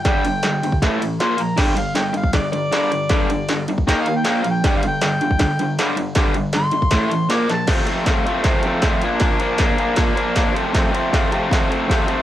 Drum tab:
CC |----------------|x---------------|----------------|----------------|
RD |x-x-x-x-x-x-x-x-|--x-x-x-x-x-x-x-|x-x-x-x-x-x-x-x-|x-x-x-x-x-x-x-x-|
SD |o---o---o---o---|o---o---o---o---|o---o---o---o---|o---o---o---o---|
BD |o------oo-------|o------oo-------|o------oo-------|o------oo-------|

CC |----------------|x---------------|----------------|----------------|
RD |x-x-x-x-x-x-x-x-|x-x-x-x-x-x-x-x-|x-x-x-x-x-x-x-x-|x-x-x-x-x-x-x-x-|
SD |o---o---o---o-o-|o---o---o---o---|o---o---o---o---|o---o---o---o---|
BD |o------oo-------|o---o---o---o---|o---o---o---o---|o---o---o---o---|